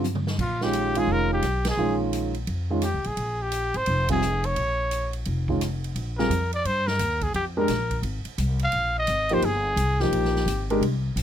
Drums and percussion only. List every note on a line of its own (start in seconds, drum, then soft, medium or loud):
0.04 hi-hat pedal medium
0.04 high tom soft
0.15 mid tom soft
0.27 snare medium
0.39 kick medium
0.39 crash medium
0.61 snare soft
0.73 hi-hat pedal soft
0.73 ride medium
0.95 ride medium
1.42 cross-stick medium
1.42 hi-hat pedal soft
1.42 ride medium
1.65 snare medium
1.65 ride medium
2.13 hi-hat pedal medium
2.13 ride medium
2.34 ride soft
2.47 ride medium
2.82 cross-stick medium
2.82 hi-hat pedal medium
2.82 ride medium
3.04 ride soft
3.17 ride medium
3.52 hi-hat pedal soft
3.52 ride medium
3.74 ride soft
3.86 ride medium
4.08 kick medium
4.08 ride medium
4.22 hi-hat pedal medium
4.44 ride soft
4.56 ride medium
4.91 hi-hat pedal medium
4.91 ride medium
5.13 ride soft
5.25 ride medium
5.48 kick medium
5.61 cross-stick medium
5.61 hi-hat pedal medium
5.61 ride medium
5.84 ride soft
5.96 ride medium
6.19 snare soft
6.31 hi-hat pedal medium
6.31 ride medium
6.52 ride soft
6.65 ride medium
6.88 snare soft
6.99 hi-hat pedal medium
6.99 ride medium
7.21 kick medium
7.21 ride soft
7.34 ride medium
7.68 snare soft
7.68 hi-hat pedal medium
7.68 ride medium
7.91 kick soft
7.91 ride soft
8.03 ride medium
8.25 ride soft
8.38 hi-hat pedal soft
8.38 ride medium
8.59 ride soft
8.72 ride medium
9.07 hi-hat pedal medium
9.07 ride medium
9.29 ride soft
9.42 ride medium
9.77 hi-hat pedal medium
9.77 ride medium
10.00 snare soft
10.12 ride medium
10.25 snare soft
10.36 snare soft
10.48 hi-hat pedal medium
10.48 ride medium
10.70 ride soft
10.82 ride medium
11.17 hi-hat pedal medium
11.17 ride medium